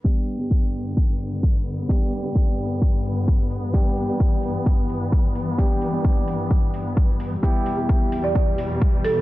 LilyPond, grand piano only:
\new Staff \with { instrumentName = "Grand piano" } { \time 4/4 \key g \major \tempo 4 = 130 <g b d' g'>8. <g b d' g'>2.~ <g b d' g'>16 | <g b d' g'>8. <g b d' g'>2.~ <g b d' g'>16 | <g b d' g'>8. <g b d' g'>2.~ <g b d' g'>16 | <g b d' g'>8. <g b d' g'>2.~ <g b d' g'>16 |
<g b e' g'>8. <g b e' g'>2.~ <g b e' g'>16 | }